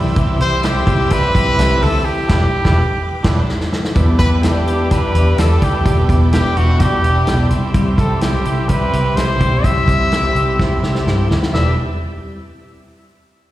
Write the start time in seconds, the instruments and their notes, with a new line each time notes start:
Already playing: fingered electric bass C2, clean electric guitar E3 G3 C4 G4, transistor combo organ C4 E4 G4 E5 B5, string machine C4 E5 G5 E6
0.14 clean electric guitar C3 E3 G3 C4 G4, kick, closed hi-hat
0.39 fingered electric bass C2, clean electric guitar G3 C4 E4 G4, trumpet C5, closed hi-hat
0.63 clean electric guitar E3 G3 C4 G4, trumpet G4, snare, closed hi-hat
0.87 fingered electric bass C2, clean electric guitar G3 C4 G4, kick, closed hi-hat
1.10 clean electric guitar C3 E3 G3 C4 D4 G4, trumpet B4, kick, closed hi-hat
1.22 clean electric guitar E4
1.34 fingered electric bass C2, clean electric guitar G3 C4 G4, kick, closed hi-hat
1.57 fingered electric bass C2, clean electric guitar E3 G3 C4 E4 G4, snare, closed hi-hat
1.82 fingered electric bass D2, clean electric guitar G3 C4 G4, trumpet A4, open hi-hat
2.05 trumpet G4, string machine B4 G5 D6
2.27 fingered electric bass E1, transistor combo organ D4 E4 G4 B4, clean electric guitar D4 G4, kick, snare, crash
2.31 clean electric guitar B3
2.63 fingered electric bass E1, clean electric guitar E3 B3 D4, transistor combo organ D4 E4 G4 B4, kick, snare
2.67 clean electric guitar G4
3.23 fingered electric bass E1, clean electric guitar B3 D4 G4, transistor combo organ D4 E4 G4 B4, kick, snare, crash
3.49 snare
3.61 snare
3.73 snare
3.84 snare
3.95 fingered electric bass E2, clean electric guitar E3 B3 D4 G4, transistor combo organ D4 E4 G4, string machine B4 E5 G5 D6, kick, closed hi-hat
4.18 fingered electric bass E2, clean electric guitar B3 D4 G4, trumpet B4, kick, closed hi-hat
4.41 clean electric guitar E3 B3 D4 G4, trumpet G4, snare, closed hi-hat
4.66 clean electric guitar B3 D4 G4, closed hi-hat
4.90 clean electric guitar E3 B3 D4 G4, trumpet B4, kick, snare, closed hi-hat
5.15 fingered electric bass E2, clean electric guitar B3 D4 G4, closed hi-hat
5.38 fingered electric bass E2, clean electric guitar E3 B3 D4 G4, trumpet A4, snare, closed hi-hat
5.61 fingered electric bass D2, clean electric guitar B3 D4 G4, trumpet G4, kick, closed hi-hat
5.85 fingered electric bass E1, clean electric guitar E3 B3 D4 G4, kick, closed hi-hat
6.08 fingered electric bass E1, clean electric guitar B3 D4 G4, kick, closed hi-hat
6.32 clean electric guitar E3 B3 D4 G4, trumpet G4, snare, closed hi-hat
6.56 fingered electric bass E1, clean electric guitar B3 D4 G4, trumpet F#4, closed hi-hat
6.80 clean electric guitar E3 B3 D4 G4, trumpet G4, kick, snare, closed hi-hat
7.03 fingered electric bass E1, clean electric guitar B3 D4 G4, closed hi-hat
7.27 fingered electric bass B1, clean electric guitar E3 B3 D4 G4, snare, closed hi-hat
7.49 fingered electric bass C2, clean electric guitar G3 C4 G4, transistor combo organ C4 E4 G4, string machine C4 E6, closed hi-hat
7.74 clean electric guitar C3 E3 G3 C4 G4, kick, closed hi-hat
7.98 fingered electric bass C2, clean electric guitar G3 C4 G4, trumpet A4, kick, closed hi-hat
8.21 clean electric guitar C3 E3 G3 C4 E4 G4, trumpet G4, snare, closed hi-hat
8.45 fingered electric bass C2, clean electric guitar G3 C4 G4, closed hi-hat
8.69 clean electric guitar E3 G3 C4 E4 G4, trumpet B4, kick, closed hi-hat
8.93 fingered electric bass C2, clean electric guitar G3 C4 G4, closed hi-hat
9.16 fingered electric bass C2, clean electric guitar C3 E3 G3 C4 E4 G4, trumpet C5, snare, closed hi-hat
9.39 fingered electric bass B1, clean electric guitar G3 C4 G4, string machine A5, kick, closed hi-hat
9.64 fingered electric bass C2, clean electric guitar C3 E3 G3 C4 G4, trumpet E5, kick, closed hi-hat
9.88 fingered electric bass C2, clean electric guitar G3 C4 G4, kick, closed hi-hat
10.11 clean electric guitar C3 E3 G3 C4 E4 G4, snare, closed hi-hat
10.35 fingered electric bass C2, clean electric guitar G3 C4 G4, closed hi-hat
10.58 clean electric guitar E3 G3 C4 E4 G4, kick, snare
10.82 fingered electric bass C2, clean electric guitar G3 C4 G4, transistor combo organ E5, snare
10.95 snare
11.06 fingered electric bass G2, clean electric guitar C3 E3 G3 C4 E4 G4, transistor combo organ G5, snare
11.29 fingered electric bass D2, clean electric guitar G3 C4 G4, transistor combo organ B5, snare
11.43 snare
11.52 fingered electric bass E1, clean electric guitar E3 G3 B3 D4 E4 G4 B4, transistor combo organ D4 E4 G4, string machine E4 G4 B4 D5 G5, trumpet E5, snare